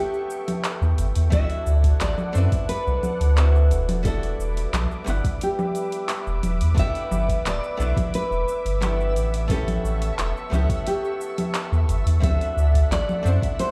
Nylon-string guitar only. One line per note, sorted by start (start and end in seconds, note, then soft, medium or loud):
0.00 0.94 G4 medium
1.33 1.97 E5 loud
2.01 2.69 D5 loud
2.69 4.01 B4 loud
4.06 5.37 A4 loud
5.43 6.40 G4 medium
6.79 7.47 E5 loud
7.47 8.11 D5 loud
8.15 9.47 B4 loud
9.51 10.87 A4 medium
10.87 11.85 G4 medium
12.24 12.91 E5 loud
12.92 13.56 D5 loud
13.59 13.71 C5 loud